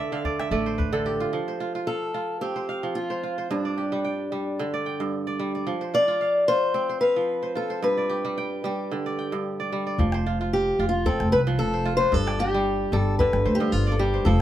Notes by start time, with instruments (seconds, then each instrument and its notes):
Already playing: kora D3 D5 E5, steel-string acoustic guitar A4
0.12 kora D3 F5
0.25 kora D5, calabash thump, calabash click
0.40 kora E5, calabash click
0.51 upright bass A1, kora A3 D5
0.66 kora C5
0.78 kora B4, calabash thump
0.93 kora D3 A4
1.06 kora G4
1.20 kora F4
1.33 kora F3
1.48 kora C5
1.60 kora F4
1.75 kora F4
1.87 steel-string acoustic guitar A4, kora F5
2.14 kora F4
2.41 kora C4, steel-string acoustic guitar G4
2.56 kora C5
2.69 kora F5
2.83 kora F3
2.95 steel-string acoustic guitar F4
3.10 kora C5
3.23 kora F4
3.38 kora C5
3.51 kora G2, steel-string acoustic guitar D4
3.65 kora D5
3.78 kora G4
3.92 kora G3
4.04 kora G5
4.32 kora G3
4.59 kora D3
4.74 kora D5
4.86 kora G5
5.00 kora G2
5.27 kora D5
5.39 kora G3
5.55 kora D5
5.67 kora F3
5.81 kora C5
5.94 kora F4, steel-string acoustic guitar D5
6.08 kora F4
6.21 kora F5
6.48 kora F4, steel-string acoustic guitar C5
6.74 kora C4
6.89 kora C5
7.01 steel-string acoustic guitar B4, kora F5
7.16 kora F3
7.43 kora C5
7.55 kora F4, steel-string acoustic guitar A4
7.70 kora C5
7.82 kora G2, steel-string acoustic guitar B4
7.97 kora D5
8.09 kora G4
8.25 kora G3
8.38 kora G5
8.64 kora G3, steel-string acoustic guitar G4
8.91 kora D3
9.06 kora D5
9.19 kora G5
9.32 kora G2
9.60 kora D5
9.72 kora G3
9.87 kora D5
9.98 upright bass F1, kora F3, calabash thump
10.12 kora C5, calabash click
10.26 kora F4
10.41 kora F4
10.53 steel-string acoustic guitar G4
10.79 upright bass F1, kora F4
10.89 steel-string acoustic guitar F4
11.06 kora C4, steel-string acoustic guitar A4, calabash thump
11.20 upright bass F1, calabash click
11.32 upright bass C2, steel-string acoustic guitar B4, kora B4, calabash click
11.47 kora F3, calabash click
11.59 upright bass F1, steel-string acoustic guitar A4
11.74 kora C5
11.85 kora F4
11.97 kora B4, steel-string acoustic guitar C5
12.12 upright bass G1, kora G2, steel-string acoustic guitar A4, calabash thump
12.27 kora D5, calabash click
12.39 kora G4, steel-string acoustic guitar G4
12.54 kora G3
12.92 upright bass G1, kora G3, steel-string acoustic guitar A4
13.19 kora D3, steel-string acoustic guitar B4, calabash thump
13.33 upright bass G1, calabash click
13.46 upright bass D2, kora C5, calabash click
13.55 steel-string acoustic guitar G4
13.60 kora G2, calabash click
13.72 upright bass G1, steel-string acoustic guitar F4
13.87 kora D5
13.92 steel-string acoustic guitar A4
13.99 kora G3, steel-string acoustic guitar G4
14.14 kora C5
14.25 upright bass F1, kora F3, steel-string acoustic guitar A4, calabash thump